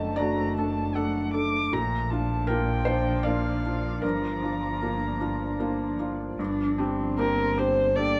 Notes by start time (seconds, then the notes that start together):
Already playing: F#1 F#2 D3 A3 A4 D5 D#5 A5
0.16 A3 D4 F#4 D5 A#5
0.56 D4 A4 A5
0.95 A3 D4 A4 F#5
1.33 D4 A4 D6
1.72 A#1 A#2 F3 D4 D5 A#5
2.10 D4 F4 A5
2.47 A#3 D4 F4 A#4 G5
2.85 D4 F4 C5
3.23 A#3 D4 F4 D5 F5
3.65 D4 F4
4.02 G1 G2 A#4 A#5
4.42 D4 F4
4.82 A#3 D4 F4
5.20 D4 F4
5.59 A#3 D4 F4
5.99 D4 F4
6.39 G1 G2 D3 D4
6.78 C4 D4 G4
7.18 A#3 D4 G4 A#4
7.57 D4 G4 C5
7.96 A#3 D4 G4 A4 D5